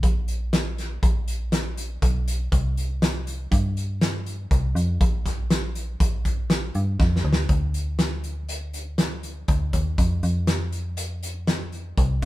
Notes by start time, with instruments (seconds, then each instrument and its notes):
0.03 fm bass A#1, kick, closed hi-hat
0.28 closed hi-hat
0.53 snare, closed hi-hat
0.78 snare, closed hi-hat
1.03 fm bass A#1, kick, closed hi-hat
1.28 closed hi-hat
1.52 snare, closed hi-hat
1.77 closed hi-hat
2.02 fm bass B1, kick, closed hi-hat
2.28 closed hi-hat
2.52 fm bass C2, kick, closed hi-hat
2.77 closed hi-hat
3.02 snare, closed hi-hat
3.27 closed hi-hat
3.52 fm bass G2, kick, closed hi-hat
3.77 closed hi-hat
4.01 snare, closed hi-hat
4.26 closed hi-hat
4.51 fm bass C2, kick, closed hi-hat
4.75 fm bass F2, closed hi-hat
5.01 fm bass A#1, kick, closed hi-hat
5.26 kick, snare, closed hi-hat
5.50 snare, closed hi-hat
5.75 closed hi-hat
6.00 fm bass A#1, kick, closed hi-hat
6.25 kick, closed hi-hat
6.50 snare, closed hi-hat
6.75 fm bass G2, closed hi-hat
6.99 fm bass F2, kick, snare
7.16 snare
7.24 fm bass D2
7.33 snare
7.49 fm bass D2, kick, closed hi-hat
7.74 closed hi-hat
7.99 snare, closed hi-hat
8.24 closed hi-hat
8.49 closed hi-hat
8.74 closed hi-hat
8.98 snare, closed hi-hat
9.23 closed hi-hat
9.48 fm bass D2, kick, closed hi-hat
9.73 fm bass D#2, kick, closed hi-hat
9.98 fm bass F2, kick, closed hi-hat
10.23 fm bass F2, closed hi-hat
10.47 snare, closed hi-hat
10.72 closed hi-hat
10.97 closed hi-hat
11.23 closed hi-hat
11.47 snare, closed hi-hat
11.72 closed hi-hat
11.97 fm bass C2, kick, closed hi-hat